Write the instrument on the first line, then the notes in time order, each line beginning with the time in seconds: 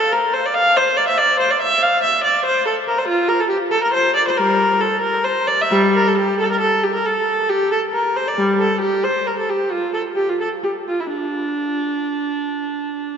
viola
Already playing: A4
0.12 A#4
0.34 C5
0.46 D5
0.54 F5
0.77 C5
0.97 D5
1.08 E5
1.18 D5
1.39 C5
1.51 D5
1.62 E5
1.82 F5
2.03 E5
2.24 D5
2.46 C5
2.66 A4
2.87 A#4
2.99 C5
3.08 F4
3.28 A#4
3.40 A4
3.49 G4
3.71 A4
3.83 A#4
3.94 C5
4.16 D5
4.28 C5
4.37 G3 A#4
4.81 A4
5.01 A#4
5.24 C5
5.48 D5
5.61 E5
5.71 G3
5.96 A#4
6.08 A4
6.18 G4
6.40 A4
6.52 A#4
6.61 A4
6.83 G4
6.95 A#4
7.06 A4
7.50 G4
7.72 A4
7.93 A#4
8.16 C5
8.28 D5
8.38 G3
8.60 A4
8.81 G4
9.04 C5
9.27 A#4
9.38 A4
9.50 G4
9.71 F4
9.94 A4
10.16 G4
10.29 F4
10.40 A4
10.63 G4
10.88 F4
11.00 E4
11.13 D4